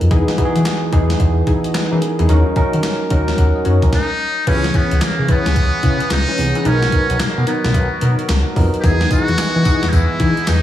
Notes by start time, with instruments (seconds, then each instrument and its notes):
Already playing: tine electric piano F#3 B3 D4 D#4 G#4 A#4
0.01 analog synth bass F2, closed hi-hat
0.10 analog synth bass E2, tine electric piano E3 B3 D#4 G#4, analog polysynth D#4 E4 G#4, kick, closed hi-hat
0.28 snare
0.38 tine electric piano E3 B3 D#4 F#4, analog synth bass E3, analog polysynth D#4 E4 G#4, kick, closed hi-hat
0.45 tine electric piano G#4
0.56 analog synth bass E3, closed hi-hat
0.65 snare, clap, closed hi-hat
0.92 analog synth bass E2, tine electric piano E3 B3 D#4 G#4, analog polysynth D#4 E4 G#4, kick, closed hi-hat
1.10 snare, closed hi-hat
1.20 analog synth bass E2, kick, closed hi-hat
1.47 analog polysynth D#4 E4 G#4, kick, closed hi-hat
1.64 tine electric piano F#4 D#5, closed hi-hat
1.75 tine electric piano D#4 B4, snare, clap, closed hi-hat
1.91 analog synth bass E3, tine electric piano C#4 A#4, analog polysynth D#4 E4 G#4
2.02 tine electric piano B3 G#4, closed hi-hat
2.19 analog synth bass E2, tine electric piano G#3 E4, analog polysynth D#4 E4 G#4, closed hi-hat
2.29 analog synth bass D#2, tine electric piano F#3 C#4 D#4 A#4, analog polysynth C#4 D#4 F#4, closed hi-hat
2.56 analog synth bass D#3, tine electric piano F#3 C#4 D#4 A#4, analog polysynth C#4 D#4 F#4, kick, closed hi-hat
2.73 analog synth bass D#3, closed hi-hat
2.83 snare, clap, closed hi-hat
3.10 analog synth bass D#2, tine electric piano F#3 C#4 D#4 A#4, analog polysynth C#4 D#4 F#4, kick, closed hi-hat
3.28 snare, closed hi-hat
3.38 analog synth bass D#2, tine electric piano A#4 F#5, kick, closed hi-hat
3.56 tine electric piano F#4 D#5
3.65 analog synth bass F#2, analog polysynth C#4 D#4 F#4, tine electric piano C#5, closed hi-hat
3.82 analog synth bass D#2, tine electric piano C#4 A#4, kick, closed hi-hat
3.93 muted trumpet D#4, kick, snare
4.47 analog synth bass C#2, analog synth pad C#3 E3 G#3 B3 C#4, tine electric piano E3 B3 C#4 G4, analog polysynth C#4 E4 B4, muted trumpet C#4, kick, closed hi-hat, crash
4.55 tine electric piano G#4
4.64 snare
4.74 muted trumpet B3, analog polysynth C#4 E4 B4, kick, closed hi-hat
4.91 analog synth bass C#2, closed hi-hat
5.01 analog synth bass C#3, muted trumpet A#3, snare, clap, closed hi-hat
5.19 analog synth bass C#3
5.29 muted trumpet B3, analog polysynth C#4 E4 B4, kick, closed hi-hat
5.46 analog synth bass C#2, snare, closed hi-hat
5.56 analog synth bass C#2, kick, closed hi-hat
5.83 analog synth bass C#3, analog polysynth C#4 E4 B4, kick, closed hi-hat
6.00 closed hi-hat
6.10 analog synth bass C#2, muted trumpet D#4, snare, clap, closed hi-hat
6.28 analog polysynth C#4 E4 B4
6.38 analog synth bass C2, tine electric piano E3 B3 C#4 G#4, open hi-hat
6.55 analog polysynth C#4 E4 B4, closed hi-hat
6.65 analog synth bass B1, analog synth pad D#3 F#3 F#4 A#4, tine electric piano F#3 B3 D#4 A#4, analog polysynth B3 D#4 A#4, muted trumpet C#4, closed hi-hat
6.82 snare
6.92 analog polysynth B3 D#4 A#4, kick, closed hi-hat
7.10 analog synth bass B1, closed hi-hat
7.20 analog synth bass B2, muted trumpet A#3, snare, clap, closed hi-hat
7.38 analog synth bass B2
7.47 analog polysynth B3 D#4 A#4, muted trumpet B3, closed hi-hat
7.64 analog synth bass B1, snare, closed hi-hat
7.74 analog synth bass B1, kick, closed hi-hat
8.01 analog synth bass B2, analog polysynth B3 D#4 A#4, closed hi-hat
8.19 closed hi-hat
8.29 analog synth bass C#2, snare, clap, closed hi-hat
8.56 analog synth bass F2, tine electric piano F#3 B3 D#4 A#4, kick, open hi-hat
8.74 closed hi-hat
8.80 tine electric piano E3 B3 D#4, analog polysynth D#4 E4 G#4, muted trumpet G4, kick, closed hi-hat, tambourine
8.84 analog synth bass E2, analog synth pad E3 G#3 B3 G#4 D#5, tine electric piano G#4, muted trumpet G#4
9.01 snare
9.11 analog polysynth D#4 E4 G#4, muted trumpet F#4, kick, closed hi-hat, tambourine
9.28 analog synth bass E2, closed hi-hat
9.38 analog synth bass E3, snare, clap, closed hi-hat, tambourine
9.56 analog synth bass E3
9.65 analog polysynth D#4 E4 G#4, kick, closed hi-hat, tambourine
9.83 analog synth bass E2, snare, closed hi-hat
9.89 analog synth bass E2, muted trumpet D#4, kick, closed hi-hat, tambourine
9.94 muted trumpet E4
10.20 analog synth bass E3, analog polysynth D#4 E4 G#4, kick, closed hi-hat
10.37 closed hi-hat
10.47 analog synth bass E2, muted trumpet D#4, snare, clap, closed hi-hat, tambourine